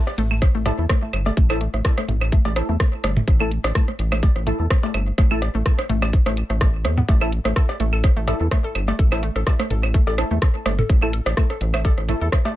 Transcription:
0.07 cross-stick, cowbell
0.18 analog synth bass A1, synth arpeggio sound A3, closed hi-hat
0.31 synth arpeggio sound A3, claves
0.42 kick, cross-stick
0.55 analog synth bass A1, synth arpeggio sound A3
0.66 synth stab A3 E4 A4, synth arpeggio sound A3, cross-stick, closed hi-hat, mid tom, cowbell
0.78 analog synth bass E2, synth stab A3 E4 A4
0.89 synth arpeggio sound A3, kick, cross-stick
1.02 synth arpeggio sound A3
1.13 analog synth bass G1, cross-stick, closed hi-hat, claves
1.26 synth arpeggio sound A3, cowbell
1.37 analog synth bass A1, synth arpeggio sound A3, kick
1.50 synth stab A3 E4 A4, cross-stick, claves
1.61 synth arpeggio sound A3, closed hi-hat
1.74 analog synth bass A1, synth arpeggio sound A3, cross-stick
1.85 kick, cross-stick, cowbell
1.98 synth arpeggio sound A3, cross-stick
2.08 analog synth bass A1, synth arpeggio sound A3, closed hi-hat, mid tom
2.21 cross-stick, claves
2.32 synth arpeggio sound A3, kick
2.45 analog synth bass A1, synth arpeggio sound A3, cowbell
2.56 synth stab A3 E4 A4, cross-stick, closed hi-hat
2.69 analog synth bass E2, synth arpeggio sound A3, synth stab A3 E4 A4
2.80 synth arpeggio sound A3, kick, cross-stick
3.04 analog synth bass G1, synth arpeggio sound A3, cross-stick, closed hi-hat, cowbell
3.17 synth arpeggio sound A3, mid tom
3.28 analog synth bass A1, kick, cross-stick
3.40 synth arpeggio sound A3, synth stab A3 E4 A4, claves
3.51 synth arpeggio sound A3, closed hi-hat
3.64 analog synth bass A1, cross-stick, cowbell
3.75 synth arpeggio sound A3, kick, cross-stick
3.88 synth arpeggio sound A3, cross-stick
3.99 analog synth bass A1, closed hi-hat
4.12 synth arpeggio sound A3, cross-stick, claves
4.23 synth arpeggio sound A3, kick, cowbell
4.36 analog synth bass A1, cross-stick
4.47 synth arpeggio sound A3, synth stab A3 E4 A4, closed hi-hat, mid tom
4.59 analog synth bass E2, synth arpeggio sound A3, synth stab A3 E4 A4
4.70 kick, cross-stick
4.83 synth arpeggio sound A3, cowbell
4.94 analog synth bass G1, synth arpeggio sound A3, cross-stick, closed hi-hat, claves
5.18 analog synth bass A1, synth arpeggio sound A3, kick, cross-stick
5.31 synth arpeggio sound A3, synth stab A3 E4 A4, claves
5.42 cross-stick, closed hi-hat, cowbell
5.55 analog synth bass A1, synth arpeggio sound A3
5.66 synth arpeggio sound A3, kick, cross-stick
5.79 cross-stick, closed hi-hat
5.89 analog synth bass A1, synth arpeggio sound A3, closed hi-hat, mid tom
6.02 synth arpeggio sound A3, cross-stick, cowbell, claves
6.13 kick
6.26 analog synth bass A1, synth arpeggio sound A3, cross-stick
6.37 closed hi-hat
6.50 analog synth bass A1, synth arpeggio sound A3, cross-stick
6.61 synth arpeggio sound A3, kick, cross-stick, cowbell
6.85 analog synth bass E2, synth arpeggio sound A3, cross-stick, closed hi-hat
6.98 synth arpeggio sound B3, mid tom
7.09 analog synth bass A1, synth arpeggio sound A3, kick, cowbell
7.21 synth stab A3 E4 A4, synth arpeggio sound A4, cross-stick, claves
7.32 closed hi-hat
7.45 analog synth bass A1, synth arpeggio sound A3, cross-stick
7.56 synth arpeggio sound A4, kick, cross-stick
7.69 cross-stick, cowbell
7.80 analog synth bass A1, synth arpeggio sound A3, closed hi-hat
7.93 synth arpeggio sound A4, claves
8.04 kick, cross-stick
8.17 analog synth bass A1, synth arpeggio sound A3
8.28 synth stab A3 E4 A4, synth arpeggio sound A4, cross-stick, closed hi-hat, mid tom, cowbell
8.40 analog synth bass E2, synth stab A3 E4 A4
8.51 synth arpeggio sound A3, kick, cross-stick
8.64 synth arpeggio sound A4
8.75 analog synth bass G1, cross-stick, closed hi-hat, claves
8.88 synth arpeggio sound A3, cowbell
8.99 analog synth bass A1, synth arpeggio sound A4, kick
9.12 synth stab A3 E4 A4, cross-stick, claves
9.23 synth arpeggio sound A3, closed hi-hat
9.36 analog synth bass A1, synth arpeggio sound A4, cross-stick
9.47 kick, cross-stick, cowbell
9.59 synth arpeggio sound A3, cross-stick
9.70 analog synth bass A1, synth arpeggio sound A4, closed hi-hat, mid tom
9.83 cross-stick, claves
9.94 synth arpeggio sound A3, kick
10.07 analog synth bass A1, synth arpeggio sound A4, cowbell
10.18 synth stab A3 E4 A4, cross-stick, closed hi-hat
10.31 analog synth bass E2, synth stab A3 E4 A4, synth arpeggio sound A3
10.42 synth arpeggio sound A4, kick, cross-stick
10.66 analog synth bass G1, synth arpeggio sound A3, cross-stick, closed hi-hat, cowbell
10.79 synth arpeggio sound A4, mid tom
10.89 analog synth bass A1, kick, cross-stick
11.02 synth arpeggio sound A3, synth stab A3 E4 A4, claves
11.13 synth arpeggio sound A4, closed hi-hat
11.26 analog synth bass A1, cross-stick, cowbell
11.37 synth arpeggio sound A3, kick, cross-stick
11.50 synth arpeggio sound A4, cross-stick
11.61 analog synth bass A1, closed hi-hat
11.74 synth arpeggio sound A3, cross-stick, claves
11.85 synth arpeggio sound A4, kick, cowbell
11.98 analog synth bass A1, cross-stick
12.09 synth arpeggio sound A3, synth stab A3 E4 A4, closed hi-hat, mid tom
12.21 analog synth bass E2, synth stab A3 E4 A4, synth arpeggio sound A4
12.32 kick, cross-stick
12.45 synth arpeggio sound A3, cowbell

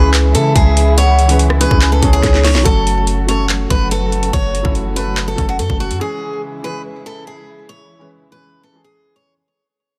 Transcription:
Already playing: 808-style bass C#2, string section C#3 E3 G#3 E4, felt piano E3 G#3 C#4 G#4, steel-string acoustic guitar B4
0.14 clap, closed hi-hat
0.35 808-style bass C#3, steel-string acoustic guitar A4, soft synth lead E5, closed hi-hat
0.56 808-style bass C#2, steel-string acoustic guitar G#4, kick, closed hi-hat
0.77 closed hi-hat
0.97 steel-string acoustic guitar C#5, soft synth lead F#5, closed hi-hat
1.19 closed hi-hat
1.27 felt piano E3 G#3 C#4 B4, closed hi-hat
1.39 closed hi-hat
1.50 cross-stick
1.59 felt piano E3 G#3 C#4 G#4, steel-string acoustic guitar B4, closed hi-hat
1.71 808-style bass C#2, kick
1.81 soft synth lead G#5, clap, closed hi-hat
1.92 steel-string acoustic guitar A4
2.01 808-style bass C#2, felt piano E3 G#3 C#4 G#4, soft synth lead C#5, kick, closed hi-hat
2.13 steel-string acoustic guitar G#4
2.23 808-style bass C#2, kick, snare, closed hi-hat
2.34 snare
2.44 steel-string acoustic guitar C#5, snare, open hi-hat
2.55 808-style bass B1, snare
2.63 808-style bass F#1, string section C#3 F#3 A3 F#4, felt piano F#3 A3 C#4 A4, steel-string acoustic guitar A4, kick, closed hi-hat
2.87 closed hi-hat
3.07 closed hi-hat
3.27 felt piano F#3 A3 C#4 A4, steel-string acoustic guitar C#5, closed hi-hat
3.49 clap, closed hi-hat
3.70 808-style bass F#1, steel-string acoustic guitar B4, kick, closed hi-hat
3.91 steel-string acoustic guitar A4, closed hi-hat
4.12 closed hi-hat
4.23 closed hi-hat
4.33 808-style bass F#1, steel-string acoustic guitar C#5, kick, closed hi-hat
4.55 closed hi-hat
4.62 808-style bass F#1, felt piano F#3 A3 C#4 E4, kick
4.75 closed hi-hat
4.95 felt piano F#3 A3 C#4 A4, steel-string acoustic guitar B4, closed hi-hat
5.17 clap, closed hi-hat
5.28 steel-string acoustic guitar A4
5.36 808-style bass F#1, felt piano F#3 A3 C#4 A4, kick, closed hi-hat
5.49 steel-string acoustic guitar F#4
5.59 808-style bass F#2, steel-string acoustic guitar A4, closed hi-hat
5.70 808-style bass F#1, kick
5.80 steel-string acoustic guitar F#4, closed hi-hat
5.91 808-style bass F#2, closed hi-hat
6.00 felt piano E3 G#3 C#4 G#4, string section E3 G#3 E4, steel-string acoustic guitar G#4
6.62 felt piano E3 G#3 C#4 G#4, steel-string acoustic guitar B4
7.06 steel-string acoustic guitar A4
7.27 steel-string acoustic guitar G#4
7.69 steel-string acoustic guitar C#5
7.99 felt piano E3 G#3 C#4 B4
8.31 felt piano E3 G#3 C#4 G#4, steel-string acoustic guitar B4
8.63 steel-string acoustic guitar A4
8.72 felt piano E3 G#3 C#4 G#4
8.84 steel-string acoustic guitar G#4
9.16 steel-string acoustic guitar C#5

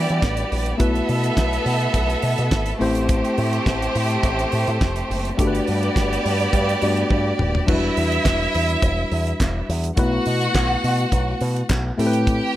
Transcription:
Already playing: tine electric piano G3 D4 E4 F#4 B4, violin section B3 G4 D5
0.09 picked electric bass E3, closed hi-hat
0.22 picked electric bass A1, kick, snare, closed hi-hat
0.37 closed hi-hat
0.52 picked electric bass A#1, open hi-hat
0.66 closed hi-hat
0.78 picked electric bass B1, tine electric piano A3 B3 E4 F#4 B4, violin section B3 A4 E5, kick, closed hi-hat
0.95 closed hi-hat
1.09 picked electric bass B2, open hi-hat
1.24 closed hi-hat
1.37 picked electric bass B1, kick, snare, closed hi-hat
1.53 closed hi-hat
1.66 picked electric bass B2, open hi-hat
1.80 closed hi-hat
1.94 picked electric bass B1, kick, closed hi-hat
2.10 closed hi-hat
2.22 picked electric bass B2, open hi-hat
2.38 picked electric bass B2, closed hi-hat
2.51 picked electric bass G#1, kick, snare, closed hi-hat
2.66 closed hi-hat
2.79 picked electric bass A1, tine electric piano A3 C4 E4 G4 C5, violin section A3 G4 C5, open hi-hat
2.95 closed hi-hat
3.09 kick, closed hi-hat
3.25 closed hi-hat
3.38 picked electric bass A2, open hi-hat
3.53 closed hi-hat
3.66 picked electric bass A1, kick, snare, closed hi-hat
3.82 closed hi-hat
3.95 picked electric bass A2, open hi-hat
4.10 closed hi-hat
4.23 picked electric bass A1, kick, closed hi-hat
4.39 closed hi-hat
4.52 picked electric bass A2, open hi-hat
4.67 picked electric bass A2, closed hi-hat
4.81 picked electric bass F1, kick, snare, closed hi-hat
4.96 closed hi-hat
5.10 picked electric bass F#1, open hi-hat
5.25 closed hi-hat
5.37 picked electric bass G1, tine electric piano A3 D4 F#4 G4 A4, violin section B3 G4 D5, kick, closed hi-hat
5.47 tine electric piano B4
5.55 closed hi-hat
5.67 picked electric bass G2, open hi-hat
5.83 closed hi-hat
5.96 picked electric bass G1, kick, snare, closed hi-hat
6.13 closed hi-hat
6.25 picked electric bass G2, open hi-hat
6.40 closed hi-hat
6.53 picked electric bass G2, kick, closed hi-hat
6.69 closed hi-hat
6.82 picked electric bass G2, tine electric piano A3 D4 F#4 G4 D5, open hi-hat
6.97 closed hi-hat
7.10 picked electric bass G2, kick, high tom
7.39 picked electric bass D#1, mid tom
7.55 floor tom
7.66 picked electric bass E1, tine electric piano F#3 D4 E4 F#4 B4, violin section E4 E5, kick, crash
7.73 tine electric piano G3
7.97 picked electric bass E2, open hi-hat
8.12 closed hi-hat
8.25 picked electric bass E1, kick, snare, clap, closed hi-hat
8.54 picked electric bass E2, open hi-hat
8.69 closed hi-hat
8.82 picked electric bass E1, kick, closed hi-hat
9.11 picked electric bass E2, open hi-hat
9.27 closed hi-hat
9.40 picked electric bass E1, kick, snare, clap, closed hi-hat
9.69 picked electric bass E2, open hi-hat
9.84 closed hi-hat
9.96 picked electric bass B1, tine electric piano A3 B3 E4 F#4 B4, violin section F#4 F#5, kick, closed hi-hat
10.25 picked electric bass B2, open hi-hat
10.41 closed hi-hat
10.55 picked electric bass B1, kick, snare, clap, closed hi-hat
10.84 picked electric bass B2, open hi-hat
10.99 closed hi-hat
11.12 picked electric bass B1, kick, closed hi-hat
11.41 picked electric bass B2, open hi-hat
11.56 closed hi-hat
11.70 picked electric bass B1, kick, snare, clap, closed hi-hat
11.97 picked electric bass A2, tine electric piano A3 C4 E4 G4 A4, violin section G4 G5, open hi-hat
12.07 tine electric piano B4
12.13 closed hi-hat
12.27 kick, closed hi-hat

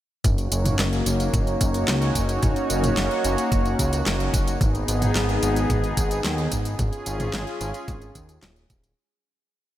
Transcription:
0.24 analog synth bass F#1, analog synth pad A#3 C#4 D#4 F#4 C#5, kick, closed hi-hat, mid tom, tambourine
0.38 closed hi-hat, tambourine
0.52 analog synth bass F#1, closed hi-hat, tambourine
0.65 closed hi-hat, mid tom, tambourine
0.79 analog synth bass F#1, snare, clap, closed hi-hat, tambourine
0.93 closed hi-hat, tambourine
1.06 analog synth bass F#1, closed hi-hat, tambourine
1.20 closed hi-hat, tambourine
1.34 analog synth bass F#1, kick, closed hi-hat, mid tom, tambourine
1.47 closed hi-hat, tambourine
1.61 analog synth bass F#1, kick, closed hi-hat, tambourine
1.74 closed hi-hat, tambourine
1.88 analog synth bass C#2, snare, clap, closed hi-hat, tambourine
2.02 closed hi-hat, tambourine
2.15 analog synth bass F#1, kick, closed hi-hat, tambourine
2.29 closed hi-hat, tambourine
2.43 analog synth bass F#1, analog synth pad A#3, kick, closed hi-hat, mid tom, tambourine
2.56 closed hi-hat, tambourine
2.70 analog synth bass F#1, closed hi-hat, tambourine
2.84 closed hi-hat, mid tom, tambourine
2.97 analog synth bass F#1, snare, clap, closed hi-hat, tambourine
3.11 closed hi-hat, tambourine
3.24 analog synth bass F#1, closed hi-hat, tambourine
3.38 closed hi-hat, tambourine
3.52 analog synth bass F#1, kick, closed hi-hat, tambourine
3.65 closed hi-hat, tambourine
3.79 analog synth bass C#2, kick, closed hi-hat, tambourine
3.93 closed hi-hat, tambourine
4.06 analog synth bass F#1, snare, clap, closed hi-hat, tambourine
4.20 closed hi-hat, tambourine
4.34 analog synth bass F#1, kick, closed hi-hat, tambourine
4.48 closed hi-hat, tambourine
4.61 analog synth bass G#1, analog synth pad B3 D#4 G#4, kick, closed hi-hat, mid tom, tambourine
4.75 closed hi-hat, tambourine
4.88 analog synth bass G#1, closed hi-hat, tambourine
5.02 closed hi-hat, mid tom, tambourine
5.15 analog synth bass G#1, snare, clap, closed hi-hat, tambourine
5.29 closed hi-hat, tambourine
5.43 analog synth bass G#1, closed hi-hat, tambourine
5.56 closed hi-hat, tambourine
5.70 analog synth bass G#1, kick, closed hi-hat, mid tom, tambourine
5.84 closed hi-hat, tambourine
5.97 analog synth bass G#1, kick, closed hi-hat, tambourine
6.11 closed hi-hat, tambourine
6.24 analog synth bass D#2, snare, clap, closed hi-hat, tambourine
6.38 closed hi-hat, tambourine
6.52 analog synth bass G#1, kick, closed hi-hat, tambourine
6.65 closed hi-hat, tambourine
6.79 analog synth bass G#1, analog synth pad C#4 F4 G#4, kick, closed hi-hat, mid tom, tambourine
6.93 closed hi-hat, tambourine
7.06 analog synth bass G#1, closed hi-hat, tambourine
7.20 closed hi-hat, mid tom, tambourine
7.33 analog synth bass G#1, snare, clap, closed hi-hat, tambourine
7.47 closed hi-hat, tambourine
7.61 analog synth bass G#1, closed hi-hat, tambourine
7.74 closed hi-hat, tambourine
7.88 analog synth bass G#1, kick, closed hi-hat, tambourine
8.02 closed hi-hat, tambourine
8.15 analog synth bass D#2, kick, closed hi-hat, tambourine
8.29 closed hi-hat, tambourine
8.43 analog synth bass D#1, snare, clap, closed hi-hat, tambourine
8.56 closed hi-hat, tambourine
8.70 analog synth bass D#1, kick, closed hi-hat, tambourine
8.84 closed hi-hat, tambourine

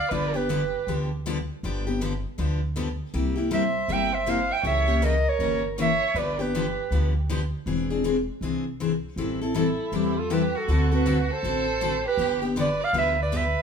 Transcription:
Already playing: violin D5, clarinet F5
0.09 upright bass G1, steel-string acoustic guitar D3 F3 B3 D4 G4, violin B4, clarinet D5
0.34 steel-string acoustic guitar B3 D4 G4, violin G4, clarinet B4
0.49 steel-string acoustic guitar D3 F3 B3 D4 G4
0.87 upright bass D2, steel-string acoustic guitar D3 F3 B3 D4 G4
1.26 steel-string acoustic guitar D3 F3 B3 D4 G4
1.63 upright bass G1, steel-string acoustic guitar D3 F3 B3 D4 G4
1.87 steel-string acoustic guitar B3 D4 G4
2.01 steel-string acoustic guitar D3 F3 B3 D4 G4
2.38 upright bass D2, steel-string acoustic guitar D3 F3 B3 D4 G4
2.76 steel-string acoustic guitar D3 F3 B3 D4 G4
3.14 upright bass C2, steel-string acoustic guitar C3 G3 A#3 E4 G4
3.36 steel-string acoustic guitar A#3 E4 G4
3.51 steel-string acoustic guitar C3 G3 A#3 E4 G4, violin C5, clarinet E5
3.88 upright bass G1, steel-string acoustic guitar C3 G3 A#3 E4 G4, violin E5
3.93 clarinet G5
4.12 violin C5, clarinet E5
4.26 steel-string acoustic guitar C3 G3 A#3 E4 G4, violin C5, clarinet F5
4.51 violin E5, clarinet G5
4.63 upright bass C#2, steel-string acoustic guitar C#3 E3 A#3 C#4 G4, violin C#5, clarinet E5
4.88 steel-string acoustic guitar A#3 C#4 G4
5.02 steel-string acoustic guitar C#3 E3 A#3 C#4 G4, violin A#4, clarinet D#5
5.26 violin A#4, clarinet C#5
5.39 upright bass G1, steel-string acoustic guitar C#3 E3 A#3 C#4 G4
5.78 steel-string acoustic guitar C#3 E3 A#3 C#4 G4, violin C#5, clarinet E5
6.14 upright bass G1, steel-string acoustic guitar D3 F3 B3 D4 G4, violin B4, clarinet D5
6.39 steel-string acoustic guitar B3 D4 G4, violin G4, clarinet B4
6.55 steel-string acoustic guitar D3 F3 B3 D4 G4
6.91 upright bass D2, steel-string acoustic guitar D3 F3 B3 D4 G4
7.29 steel-string acoustic guitar D3 F3 B3 D4 G4
7.66 upright bass E1, steel-string acoustic guitar E3 C4 D4 G#4
7.90 steel-string acoustic guitar C4 D4 G#4
8.04 steel-string acoustic guitar E3 C4 D4 G#4
8.41 upright bass C2, steel-string acoustic guitar E3 C4 D4 G#4
8.80 steel-string acoustic guitar E3 C4 D4 G#4
9.16 upright bass A1, steel-string acoustic guitar E3 G3 C4 E4 A4
9.41 steel-string acoustic guitar C4 E4 A4
9.54 steel-string acoustic guitar E3 G3 C4 E4 A4, violin E4, clarinet A4
9.92 upright bass E2, steel-string acoustic guitar E3 G3 C4 E4 A4, violin E4, clarinet G4
10.16 violin F4, clarinet A4
10.30 steel-string acoustic guitar E3 G3 C4 E4 A4, violin G4, clarinet B4
10.55 violin F#4, clarinet A4
10.68 upright bass D2, steel-string acoustic guitar D3 A3 C4 F#4 A4
10.92 steel-string acoustic guitar C4 F#4 A4, violin F#4, clarinet B4
11.06 steel-string acoustic guitar D3 A3 C4 F#4 A4
11.30 violin A4, clarinet C5
11.43 upright bass A1, steel-string acoustic guitar D3 A3 C4 F#4 A4
11.81 steel-string acoustic guitar D3 A3 C4 F#4 A4
12.07 violin G4, clarinet B4
12.17 upright bass G1, steel-string acoustic guitar D3 F3 B3 D4 G4
12.42 steel-string acoustic guitar B3 D4 G4
12.56 steel-string acoustic guitar D3 F3 B3 D4 G4, violin B4
12.61 clarinet D5
12.81 violin D5, clarinet F5
12.93 upright bass D2, steel-string acoustic guitar D3 F3 B3 D4 G4, violin B4
12.98 clarinet E5
13.19 violin B4, clarinet D5
13.32 steel-string acoustic guitar D3 F3 B3 D4 G4, violin B4
13.37 clarinet E5

